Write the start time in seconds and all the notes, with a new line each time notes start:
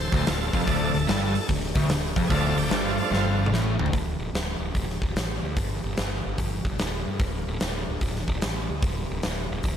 Already playing: D1
0.00 A4 C5
0.12 D1 D2 A4 C5, kick, open hi-hat
0.27 D1 D2 F4 A4, snare, open hi-hat
0.41 F4 A4
0.53 F1 F2 F4 A4, kick, open hi-hat
0.67 D1 D2 F3 A3 D4 A4, kick, open hi-hat
0.94 D1 D2, open hi-hat
1.08 G1 G2, snare, open hi-hat
1.35 open hi-hat
1.49 D1 D2, kick, open hi-hat
1.63 snare
1.75 D1 D2, kick, open hi-hat
1.89 D1 D2, snare, open hi-hat
2.16 F1 F2, kick, open hi-hat
2.28 D1 D2 F3 A3 D4 F4 G#4, kick, open hi-hat
2.32 A4
2.46 F4 A4
2.56 D1 D2 D4 G4, open hi-hat
2.71 G1 G2 D4 G4, snare, open hi-hat
2.85 D4 F4
2.98 D4 F4, open hi-hat
3.11 G1 G2 F4, snare
3.26 high tom
3.37 F3 A3 D4
3.46 mid tom
3.52 A1 A2, snare
3.78 D1 D2, floor tom
3.86 floor tom
3.93 D1, kick, open hi-hat
4.19 D1
4.33 D1, snare, open hi-hat
4.59 D1
4.75 D1, kick, open hi-hat
4.90 snare
5.02 D1, kick
5.16 A1, snare, open hi-hat
5.43 D2
5.57 G1, kick, open hi-hat
5.84 G1
5.97 G1, snare, open hi-hat
6.26 G1
6.38 G1, kick, open hi-hat
6.65 G1, kick
6.79 D1, snare, open hi-hat
7.07 G2
7.19 D1, kick, open hi-hat
7.47 D1
7.60 D1, snare, open hi-hat
7.89 D1
8.01 D1, kick, open hi-hat
8.16 snare
8.28 D1, kick
8.42 A1, snare, open hi-hat
8.70 D2
8.82 D1, kick, open hi-hat
9.11 D1
9.23 D1, snare, open hi-hat
9.51 D1
9.63 D1, kick, open hi-hat